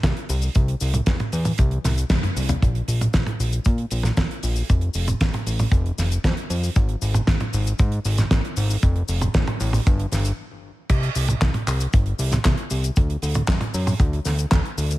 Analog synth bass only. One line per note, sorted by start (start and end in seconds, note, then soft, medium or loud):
0.03 0.13 C2 medium
0.29 0.49 C2 medium
0.56 0.75 C2 medium
0.81 1.01 C2 medium
1.07 1.17 E2 medium
1.33 1.53 E2 loud
1.59 1.79 C2 loud
1.85 2.04 C2 medium
2.10 2.20 C2 medium
2.36 2.56 C2 medium
2.62 2.82 A#1 loud
2.88 3.08 A#1 medium
3.14 3.24 A#1 medium
3.40 3.60 A#1 medium
3.66 3.86 A#2 medium
3.91 4.11 A#1 loud
4.17 4.27 A#1 loud
4.43 4.63 A#1 medium
4.70 4.89 F1 medium
4.95 5.15 F1 medium
5.21 5.31 A1 medium
5.47 5.66 A1 medium
5.72 5.92 F1 loud
5.98 6.18 F1 medium
6.24 6.34 F2 loud
6.50 6.70 F2 medium
6.76 6.96 G#1 loud
7.02 7.22 G#1 medium
7.28 7.38 G#1 medium
7.53 7.73 G#1 medium
7.79 7.99 G#2 medium
8.05 8.25 G#1 medium
8.31 8.41 G#1 loud
8.57 8.77 G#1 loud
8.83 9.03 F1 medium
9.09 9.29 F1 medium
9.35 9.45 A1 loud
9.60 9.80 A1 loud
9.87 10.06 G1 loud
10.12 10.32 G1 medium
10.90 11.10 C2 loud
11.16 11.35 C2 medium
11.42 11.51 C2 medium
11.67 11.87 C2 medium
11.94 12.13 G1 medium
12.19 12.39 C2 loud
12.45 12.55 C2 loud
12.71 12.91 C2 loud
12.97 13.17 D2 medium
13.22 13.42 D2 medium
13.48 13.58 F#2 medium
13.74 13.94 F#2 loud
14.00 14.20 D2 loud
14.26 14.46 D2 medium
14.52 14.62 D2 medium
14.78 14.98 D2 medium